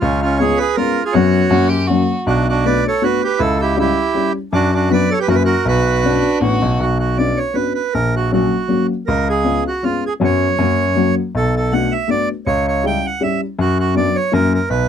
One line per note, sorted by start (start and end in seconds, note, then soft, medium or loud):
0.00 0.51 C#2 medium
0.00 0.21 C#4 medium
0.00 0.20 F4 medium
0.22 0.40 C#4 medium
0.22 0.38 F4 medium
0.38 0.60 G#3 medium
0.38 0.60 B3 medium
0.38 0.60 C#4 medium
0.38 0.60 F4 medium
0.38 0.59 G#4 medium
0.38 0.59 C#5 medium
0.57 0.76 G#4 medium
0.57 0.76 B4 loud
0.75 0.97 G#3 medium
0.75 0.97 B3 medium
0.75 0.97 C#4 soft
0.75 0.98 F4 medium
0.75 1.04 F4 medium
0.75 1.03 A#4 medium
1.05 1.14 F4 medium
1.05 1.14 G#4 medium
1.13 1.39 F#2 medium
1.13 1.45 F#3 medium
1.13 1.45 B3 medium
1.13 1.45 C#4 medium
1.13 1.68 F#4 medium
1.13 1.45 F#4 medium
1.13 1.67 C#5 medium
1.50 2.00 F#2 medium
1.50 1.72 F#3 medium
1.50 1.72 A#3 medium
1.50 1.72 C#4 medium
1.50 1.70 F#4 medium
1.50 1.72 F#4 medium
1.69 1.89 G4 medium
1.87 2.10 F#3 soft
1.87 2.10 A#3 soft
1.87 2.10 C#4 medium
1.87 2.18 F#4 medium
1.87 2.10 F#4 medium
2.27 2.76 B1 medium
2.27 2.46 D4 medium
2.27 2.48 F#4 medium
2.49 2.65 D4 medium
2.49 2.66 F#4 medium
2.65 2.86 A3 medium
2.65 2.86 B3 medium
2.65 2.86 D4 medium
2.65 2.86 F#4 medium
2.65 2.84 B4 medium
2.65 2.86 D5 medium
2.88 3.03 A4 medium
2.88 3.05 C#5 medium
3.02 3.23 A3 medium
3.02 3.23 B3 medium
3.02 3.23 D4 soft
3.02 3.23 F#4 medium
3.02 3.22 F#4 medium
3.02 3.23 B4 medium
3.24 3.39 G4 medium
3.24 3.42 B4 medium
3.39 3.88 C#2 medium
3.39 3.58 E4 medium
3.39 3.61 A4 medium
3.60 3.76 E4 medium
3.60 3.78 G4 medium
3.77 3.97 G3 medium
3.77 3.97 C#4 medium
3.77 3.98 E4 soft
3.77 4.32 E4 medium
3.77 3.98 G4 medium
3.81 4.33 G4 medium
4.14 4.35 G3 soft
4.14 4.35 C#4 soft
4.14 4.35 E4 soft
4.14 4.35 G4 medium
4.53 5.02 F#2 medium
4.53 4.72 D4 medium
4.53 4.74 F#4 loud
4.74 4.89 D4 medium
4.74 4.92 F#4 medium
4.89 5.10 F#3 medium
4.89 5.10 B3 medium
4.89 5.10 D4 medium
4.89 5.10 F#4 medium
4.89 5.10 B4 medium
4.94 5.13 D5 medium
5.11 5.19 A4 medium
5.11 5.20 C#5 medium
5.19 5.27 G4 medium
5.19 5.29 B4 medium
5.28 5.52 F#2 medium
5.28 5.48 A#3 soft
5.28 5.48 C#4 medium
5.28 5.48 E4 medium
5.28 5.35 F#4 medium
5.28 5.48 F#4 medium
5.28 5.37 A#4 medium
5.35 5.43 B4 medium
5.45 5.65 F#4 medium
5.45 5.67 A#4 medium
5.65 6.15 B1 medium
5.65 6.38 F#4 medium
5.65 6.39 B4 medium
6.03 6.24 B3 medium
6.03 6.24 C#4 medium
6.03 6.42 D4 medium
6.03 6.24 D4 medium
6.03 6.24 F#4 medium
6.40 6.60 A1 medium
6.40 6.62 B3 medium
6.40 6.62 C#4 medium
6.40 6.62 D4 soft
6.40 6.79 F#4 loud
6.40 6.62 F#4 medium
6.62 6.78 B1 medium
6.80 7.29 B1 medium
6.80 6.98 F#4 medium
7.00 7.18 F#4 medium
7.18 7.38 B3 medium
7.18 7.39 C#4 soft
7.18 7.39 D4 soft
7.18 7.39 F#4 medium
7.18 7.39 D5 medium
7.37 7.56 C#5 medium
7.54 7.76 B3 soft
7.54 7.75 C#4 soft
7.54 7.76 D4 soft
7.54 7.76 F#4 medium
7.54 7.73 B4 medium
7.75 7.94 B4 medium
7.94 8.44 A#1 medium
7.94 8.15 A#4 medium
8.16 8.32 F#4 medium
8.32 8.53 F#3 medium
8.32 8.53 A#3 soft
8.32 8.53 C#4 soft
8.32 8.53 F#4 medium
8.32 8.87 F#4 medium
8.68 8.90 F#3 soft
8.68 8.90 A#3 soft
8.68 8.90 C#4 soft
8.68 8.90 F#4 medium
9.07 9.57 C#2 medium
9.07 9.28 A#4 medium
9.30 9.64 G#4 medium
9.44 9.65 G#3 medium
9.44 9.65 B3 soft
9.44 9.65 C#4 medium
9.44 9.65 F4 medium
9.68 9.84 F#4 medium
9.83 10.03 G#3 soft
9.83 10.03 B3 soft
9.83 10.03 C#4 soft
9.83 10.04 F4 medium
10.06 10.14 G#4 medium
10.20 10.45 F#2 medium
10.20 10.51 F#3 medium
10.20 10.51 B3 medium
10.20 10.51 C#4 medium
10.20 10.51 F#4 medium
10.24 11.15 C#5 medium
10.58 11.08 F#2 medium
10.58 10.79 F#3 soft
10.58 10.80 A#3 soft
10.58 10.79 C#4 soft
10.58 10.79 F#4 medium
10.95 11.16 F#3 medium
10.95 11.17 A#3 soft
10.95 11.17 C#4 soft
10.95 11.17 F#4 medium
11.35 11.84 B1 medium
11.35 11.55 A4 medium
11.57 11.73 A4 medium
11.72 11.92 A3 medium
11.72 11.93 B3 soft
11.72 11.93 D4 soft
11.72 11.93 F#4 medium
11.72 11.93 F#5 medium
11.92 12.10 E5 medium
12.08 12.29 A3 soft
12.08 12.29 B3 soft
12.08 12.29 D4 soft
12.08 12.29 F#4 soft
12.08 12.29 D5 medium
12.47 12.95 C#2 medium
12.47 12.66 C#5 medium
12.68 12.85 C#5 medium
12.84 13.04 G3 soft
12.84 13.05 C#4 soft
12.84 13.04 E4 soft
12.84 13.05 G4 medium
12.84 13.06 G5 medium
13.06 13.23 F#5 medium
13.20 13.41 G3 soft
13.20 13.41 C#4 soft
13.20 13.41 E4 soft
13.20 13.41 G4 medium
13.20 13.41 E5 medium
13.59 14.06 F#2 medium
13.59 13.78 F#4 medium
13.80 13.95 F#4 medium
13.95 14.15 F#3 medium
13.95 14.15 B3 medium
13.95 14.15 D4 medium
13.95 14.15 F#4 medium
13.95 14.17 D5 medium
14.16 14.33 C#5 medium
14.32 14.57 F#2 loud
14.32 14.52 A#3 soft
14.32 14.52 C#4 soft
14.32 14.52 E4 soft
14.32 14.52 F#4 soft
14.32 14.53 A#4 medium
14.55 14.69 A#4 medium
14.70 14.88 B1 medium
14.70 14.88 B4 medium